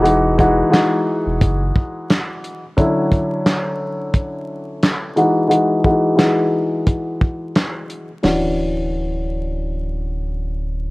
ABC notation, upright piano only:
X:1
M:4/4
L:1/16
Q:"Swing 16ths" 1/4=88
K:D
V:1 name="Upright piano"
[E,^G,^DF]2 [E,G,DF]2 [E,G,DF]8- [E,G,DF]3 z | [D,F,CE]12- [D,F,CE]2 [E,^G,^DF]2 | [E,^G,^DF]2 [E,G,DF]2 [E,G,DF]8- [E,G,DF]3 z | [E,CDF]16 |]